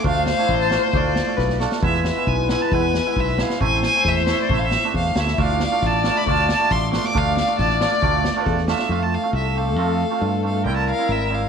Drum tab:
SD |-ooo-oo-|--oooooo|-oo---o-|--o--ooo|
BD |o---o---|o---o---|o---o---|o---o---|

SD |--o-ooo-|--oo-ooo|--ooo-o-|--o---oo|
BD |o---o---|o---o---|o---o---|o---o---|

SD |--ooooo-|--o-oooo|--------|--------|
BD |o---o---|o---o---|--------|--------|

SD |--------|
BD |--------|